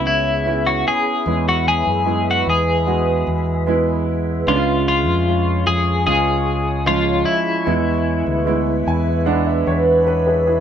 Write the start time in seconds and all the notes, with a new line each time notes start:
Already playing: C#2 C#3 B3 C#4 E4 F#4 G#4 C#5 E5 B5
0.07 E4
0.46 B3 C#4 E4
0.67 F#4
0.88 G#4
1.26 E2 E3 G#3 B3 E4 B4
1.49 F#4
1.68 G#4
1.87 F#2
2.06 G#3 B3 E4
2.31 F#4
2.46 E2 G#4
2.86 G#3 B3 F#4
3.27 E2
3.67 G#3 B3 E4
4.47 C#2 C#3 G#3 C#4 D4 F4 G#4 C#5 G#5 C#6
4.55 F4
4.88 F4
5.07 F2
5.28 G#3 C#4 F4
5.67 F2 G#4
6.06 C#2 G#3 C#4 F4 G#4
6.86 F3 G#3 C#4 F4
7.25 E4
7.66 E2 E3 G#3 B3 E4 B4 E5 B5
8.26 D2
8.46 G#3 B3 E4
8.86 E2 G#5
9.25 G#3 B3 D4 F#5
9.47 E5
9.67 E2 C#5
10.07 B4
10.27 G#4 B4
10.47 E4 G#4